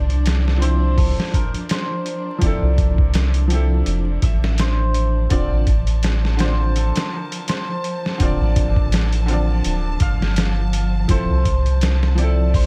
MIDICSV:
0, 0, Header, 1, 6, 480
1, 0, Start_track
1, 0, Tempo, 722892
1, 1606, Time_signature, 4, 2, 24, 8
1, 8408, End_track
2, 0, Start_track
2, 0, Title_t, "Hammered dulcimer"
2, 0, Program_c, 0, 15
2, 0, Note_on_c, 0, 72, 104
2, 0, Note_on_c, 0, 74, 109
2, 405, Note_off_c, 0, 72, 0
2, 408, Note_on_c, 0, 72, 101
2, 651, Note_on_c, 0, 69, 92
2, 894, Note_on_c, 0, 70, 87
2, 934, Note_off_c, 0, 69, 0
2, 1133, Note_off_c, 0, 72, 0
2, 1136, Note_on_c, 0, 72, 87
2, 1324, Note_off_c, 0, 74, 0
2, 1613, Note_on_c, 0, 74, 91
2, 2772, Note_off_c, 0, 70, 0
2, 2811, Note_on_c, 0, 76, 101
2, 2888, Note_off_c, 0, 72, 0
2, 3055, Note_on_c, 0, 72, 101
2, 3248, Note_off_c, 0, 74, 0
2, 3529, Note_on_c, 0, 74, 114
2, 4250, Note_off_c, 0, 72, 0
2, 4253, Note_on_c, 0, 72, 98
2, 4336, Note_off_c, 0, 76, 0
2, 4494, Note_on_c, 0, 69, 95
2, 4737, Note_on_c, 0, 70, 84
2, 4777, Note_off_c, 0, 69, 0
2, 4970, Note_off_c, 0, 72, 0
2, 4973, Note_on_c, 0, 72, 96
2, 5164, Note_off_c, 0, 74, 0
2, 5458, Note_on_c, 0, 74, 95
2, 6615, Note_off_c, 0, 70, 0
2, 6651, Note_on_c, 0, 77, 108
2, 6725, Note_off_c, 0, 72, 0
2, 7093, Note_off_c, 0, 74, 0
2, 7373, Note_on_c, 0, 72, 102
2, 8089, Note_on_c, 0, 74, 96
2, 8125, Note_off_c, 0, 77, 0
2, 8332, Note_off_c, 0, 72, 0
2, 8335, Note_on_c, 0, 72, 90
2, 8399, Note_off_c, 0, 72, 0
2, 8408, Note_off_c, 0, 74, 0
2, 8408, End_track
3, 0, Start_track
3, 0, Title_t, "Upright piano"
3, 0, Program_c, 1, 0
3, 381, Note_on_c, 1, 53, 72
3, 394, Note_on_c, 1, 60, 67
3, 411, Note_on_c, 1, 64, 66
3, 428, Note_on_c, 1, 72, 82
3, 1568, Note_off_c, 1, 53, 0
3, 1574, Note_off_c, 1, 60, 0
3, 1583, Note_off_c, 1, 64, 0
3, 1583, Note_on_c, 1, 53, 83
3, 1591, Note_off_c, 1, 72, 0
3, 1601, Note_on_c, 1, 60, 75
3, 1616, Note_on_c, 1, 64, 77
3, 1633, Note_on_c, 1, 69, 94
3, 2289, Note_off_c, 1, 53, 0
3, 2298, Note_off_c, 1, 60, 0
3, 2305, Note_off_c, 1, 64, 0
3, 2309, Note_on_c, 1, 53, 83
3, 2314, Note_off_c, 1, 69, 0
3, 2325, Note_on_c, 1, 60, 72
3, 2340, Note_on_c, 1, 64, 76
3, 2354, Note_on_c, 1, 69, 85
3, 3492, Note_off_c, 1, 53, 0
3, 3500, Note_off_c, 1, 60, 0
3, 3507, Note_off_c, 1, 64, 0
3, 3514, Note_off_c, 1, 69, 0
3, 3515, Note_on_c, 1, 50, 78
3, 3525, Note_on_c, 1, 60, 70
3, 3531, Note_on_c, 1, 65, 74
3, 3540, Note_on_c, 1, 74, 81
3, 3752, Note_off_c, 1, 50, 0
3, 3756, Note_off_c, 1, 60, 0
3, 3760, Note_off_c, 1, 65, 0
3, 3764, Note_off_c, 1, 74, 0
3, 4224, Note_on_c, 1, 50, 70
3, 4240, Note_on_c, 1, 60, 65
3, 4256, Note_on_c, 1, 65, 65
3, 4272, Note_on_c, 1, 74, 77
3, 5409, Note_off_c, 1, 50, 0
3, 5417, Note_off_c, 1, 60, 0
3, 5425, Note_off_c, 1, 65, 0
3, 5430, Note_on_c, 1, 50, 83
3, 5433, Note_off_c, 1, 74, 0
3, 5444, Note_on_c, 1, 60, 79
3, 5459, Note_on_c, 1, 65, 79
3, 5476, Note_on_c, 1, 74, 89
3, 6132, Note_off_c, 1, 50, 0
3, 6139, Note_off_c, 1, 60, 0
3, 6147, Note_off_c, 1, 65, 0
3, 6147, Note_on_c, 1, 50, 86
3, 6155, Note_off_c, 1, 74, 0
3, 6160, Note_on_c, 1, 60, 74
3, 6176, Note_on_c, 1, 65, 77
3, 6193, Note_on_c, 1, 74, 94
3, 7331, Note_off_c, 1, 50, 0
3, 7337, Note_off_c, 1, 60, 0
3, 7345, Note_off_c, 1, 65, 0
3, 7354, Note_off_c, 1, 74, 0
3, 7356, Note_on_c, 1, 53, 80
3, 7367, Note_on_c, 1, 60, 73
3, 7375, Note_on_c, 1, 64, 74
3, 7381, Note_on_c, 1, 69, 87
3, 7592, Note_off_c, 1, 53, 0
3, 7597, Note_off_c, 1, 60, 0
3, 7602, Note_off_c, 1, 64, 0
3, 7605, Note_off_c, 1, 69, 0
3, 8068, Note_on_c, 1, 53, 74
3, 8083, Note_on_c, 1, 60, 70
3, 8100, Note_on_c, 1, 64, 72
3, 8116, Note_on_c, 1, 69, 85
3, 8408, Note_off_c, 1, 53, 0
3, 8408, Note_off_c, 1, 60, 0
3, 8408, Note_off_c, 1, 64, 0
3, 8408, Note_off_c, 1, 69, 0
3, 8408, End_track
4, 0, Start_track
4, 0, Title_t, "String section"
4, 0, Program_c, 2, 48
4, 0, Note_on_c, 2, 53, 77
4, 0, Note_on_c, 2, 62, 82
4, 3520, Note_off_c, 2, 53, 0
4, 3527, Note_on_c, 2, 53, 78
4, 3527, Note_on_c, 2, 81, 84
4, 3539, Note_off_c, 2, 62, 0
4, 8408, Note_off_c, 2, 53, 0
4, 8408, Note_off_c, 2, 81, 0
4, 8408, End_track
5, 0, Start_track
5, 0, Title_t, "Sub bass"
5, 0, Program_c, 3, 38
5, 0, Note_on_c, 3, 36, 83
5, 754, Note_off_c, 3, 36, 0
5, 1606, Note_on_c, 3, 29, 92
5, 1723, Note_off_c, 3, 29, 0
5, 1740, Note_on_c, 3, 36, 87
5, 2546, Note_off_c, 3, 36, 0
5, 2566, Note_on_c, 3, 29, 94
5, 2780, Note_off_c, 3, 29, 0
5, 2807, Note_on_c, 3, 33, 88
5, 3506, Note_off_c, 3, 33, 0
5, 3524, Note_on_c, 3, 26, 94
5, 3643, Note_off_c, 3, 26, 0
5, 3667, Note_on_c, 3, 33, 86
5, 4597, Note_off_c, 3, 33, 0
5, 5446, Note_on_c, 3, 26, 98
5, 5564, Note_off_c, 3, 26, 0
5, 5584, Note_on_c, 3, 33, 84
5, 6387, Note_off_c, 3, 33, 0
5, 6409, Note_on_c, 3, 26, 96
5, 6622, Note_off_c, 3, 26, 0
5, 6644, Note_on_c, 3, 31, 82
5, 7345, Note_off_c, 3, 31, 0
5, 7366, Note_on_c, 3, 29, 91
5, 7484, Note_off_c, 3, 29, 0
5, 7502, Note_on_c, 3, 36, 87
5, 8408, Note_off_c, 3, 36, 0
5, 8408, End_track
6, 0, Start_track
6, 0, Title_t, "Drums"
6, 66, Note_on_c, 9, 42, 41
6, 132, Note_off_c, 9, 42, 0
6, 170, Note_on_c, 9, 42, 85
6, 181, Note_on_c, 9, 38, 108
6, 237, Note_off_c, 9, 42, 0
6, 247, Note_off_c, 9, 38, 0
6, 318, Note_on_c, 9, 38, 40
6, 384, Note_off_c, 9, 38, 0
6, 412, Note_on_c, 9, 42, 64
6, 479, Note_off_c, 9, 42, 0
6, 648, Note_on_c, 9, 36, 104
6, 650, Note_on_c, 9, 46, 78
6, 715, Note_off_c, 9, 36, 0
6, 716, Note_off_c, 9, 46, 0
6, 795, Note_on_c, 9, 38, 58
6, 861, Note_off_c, 9, 38, 0
6, 888, Note_on_c, 9, 36, 97
6, 891, Note_on_c, 9, 42, 69
6, 955, Note_off_c, 9, 36, 0
6, 958, Note_off_c, 9, 42, 0
6, 1025, Note_on_c, 9, 42, 43
6, 1092, Note_off_c, 9, 42, 0
6, 1124, Note_on_c, 9, 42, 92
6, 1135, Note_on_c, 9, 38, 123
6, 1191, Note_off_c, 9, 42, 0
6, 1201, Note_off_c, 9, 38, 0
6, 1366, Note_on_c, 9, 42, 65
6, 1433, Note_off_c, 9, 42, 0
6, 1604, Note_on_c, 9, 42, 83
6, 1606, Note_on_c, 9, 36, 102
6, 1670, Note_off_c, 9, 42, 0
6, 1673, Note_off_c, 9, 36, 0
6, 1846, Note_on_c, 9, 36, 101
6, 1846, Note_on_c, 9, 42, 69
6, 1913, Note_off_c, 9, 36, 0
6, 1913, Note_off_c, 9, 42, 0
6, 1981, Note_on_c, 9, 36, 98
6, 2047, Note_off_c, 9, 36, 0
6, 2083, Note_on_c, 9, 42, 93
6, 2093, Note_on_c, 9, 38, 119
6, 2149, Note_off_c, 9, 42, 0
6, 2160, Note_off_c, 9, 38, 0
6, 2218, Note_on_c, 9, 42, 43
6, 2284, Note_off_c, 9, 42, 0
6, 2325, Note_on_c, 9, 42, 66
6, 2392, Note_off_c, 9, 42, 0
6, 2564, Note_on_c, 9, 42, 81
6, 2630, Note_off_c, 9, 42, 0
6, 2804, Note_on_c, 9, 42, 68
6, 2805, Note_on_c, 9, 36, 97
6, 2870, Note_off_c, 9, 42, 0
6, 2871, Note_off_c, 9, 36, 0
6, 2948, Note_on_c, 9, 38, 58
6, 3014, Note_off_c, 9, 38, 0
6, 3041, Note_on_c, 9, 42, 93
6, 3051, Note_on_c, 9, 38, 116
6, 3107, Note_off_c, 9, 42, 0
6, 3118, Note_off_c, 9, 38, 0
6, 3283, Note_on_c, 9, 42, 69
6, 3350, Note_off_c, 9, 42, 0
6, 3522, Note_on_c, 9, 42, 88
6, 3525, Note_on_c, 9, 36, 104
6, 3588, Note_off_c, 9, 42, 0
6, 3591, Note_off_c, 9, 36, 0
6, 3763, Note_on_c, 9, 42, 67
6, 3765, Note_on_c, 9, 36, 97
6, 3830, Note_off_c, 9, 42, 0
6, 3832, Note_off_c, 9, 36, 0
6, 3897, Note_on_c, 9, 42, 44
6, 3964, Note_off_c, 9, 42, 0
6, 4002, Note_on_c, 9, 42, 89
6, 4013, Note_on_c, 9, 38, 112
6, 4069, Note_off_c, 9, 42, 0
6, 4079, Note_off_c, 9, 38, 0
6, 4150, Note_on_c, 9, 38, 42
6, 4216, Note_off_c, 9, 38, 0
6, 4242, Note_on_c, 9, 42, 78
6, 4252, Note_on_c, 9, 38, 102
6, 4308, Note_off_c, 9, 42, 0
6, 4319, Note_off_c, 9, 38, 0
6, 4487, Note_on_c, 9, 42, 58
6, 4554, Note_off_c, 9, 42, 0
6, 4619, Note_on_c, 9, 42, 76
6, 4629, Note_on_c, 9, 38, 110
6, 4685, Note_off_c, 9, 42, 0
6, 4696, Note_off_c, 9, 38, 0
6, 4860, Note_on_c, 9, 42, 66
6, 4927, Note_off_c, 9, 42, 0
6, 4965, Note_on_c, 9, 42, 82
6, 4976, Note_on_c, 9, 38, 109
6, 5032, Note_off_c, 9, 42, 0
6, 5042, Note_off_c, 9, 38, 0
6, 5207, Note_on_c, 9, 42, 62
6, 5273, Note_off_c, 9, 42, 0
6, 5352, Note_on_c, 9, 38, 38
6, 5419, Note_off_c, 9, 38, 0
6, 5444, Note_on_c, 9, 42, 85
6, 5445, Note_on_c, 9, 36, 98
6, 5511, Note_off_c, 9, 42, 0
6, 5512, Note_off_c, 9, 36, 0
6, 5685, Note_on_c, 9, 42, 70
6, 5686, Note_on_c, 9, 36, 98
6, 5751, Note_off_c, 9, 42, 0
6, 5753, Note_off_c, 9, 36, 0
6, 5819, Note_on_c, 9, 36, 96
6, 5886, Note_off_c, 9, 36, 0
6, 5925, Note_on_c, 9, 42, 89
6, 5935, Note_on_c, 9, 38, 121
6, 5991, Note_off_c, 9, 42, 0
6, 6002, Note_off_c, 9, 38, 0
6, 6059, Note_on_c, 9, 42, 46
6, 6125, Note_off_c, 9, 42, 0
6, 6164, Note_on_c, 9, 42, 65
6, 6231, Note_off_c, 9, 42, 0
6, 6404, Note_on_c, 9, 42, 82
6, 6470, Note_off_c, 9, 42, 0
6, 6640, Note_on_c, 9, 42, 71
6, 6644, Note_on_c, 9, 36, 99
6, 6706, Note_off_c, 9, 42, 0
6, 6710, Note_off_c, 9, 36, 0
6, 6788, Note_on_c, 9, 38, 59
6, 6854, Note_off_c, 9, 38, 0
6, 6881, Note_on_c, 9, 42, 92
6, 6892, Note_on_c, 9, 38, 118
6, 6948, Note_off_c, 9, 42, 0
6, 6958, Note_off_c, 9, 38, 0
6, 7126, Note_on_c, 9, 42, 69
6, 7192, Note_off_c, 9, 42, 0
6, 7362, Note_on_c, 9, 42, 91
6, 7364, Note_on_c, 9, 36, 109
6, 7428, Note_off_c, 9, 42, 0
6, 7431, Note_off_c, 9, 36, 0
6, 7606, Note_on_c, 9, 36, 95
6, 7606, Note_on_c, 9, 42, 67
6, 7672, Note_off_c, 9, 36, 0
6, 7672, Note_off_c, 9, 42, 0
6, 7742, Note_on_c, 9, 42, 43
6, 7808, Note_off_c, 9, 42, 0
6, 7844, Note_on_c, 9, 42, 90
6, 7855, Note_on_c, 9, 38, 116
6, 7911, Note_off_c, 9, 42, 0
6, 7922, Note_off_c, 9, 38, 0
6, 7988, Note_on_c, 9, 38, 43
6, 8054, Note_off_c, 9, 38, 0
6, 8087, Note_on_c, 9, 42, 69
6, 8153, Note_off_c, 9, 42, 0
6, 8327, Note_on_c, 9, 36, 108
6, 8329, Note_on_c, 9, 46, 83
6, 8393, Note_off_c, 9, 36, 0
6, 8395, Note_off_c, 9, 46, 0
6, 8408, End_track
0, 0, End_of_file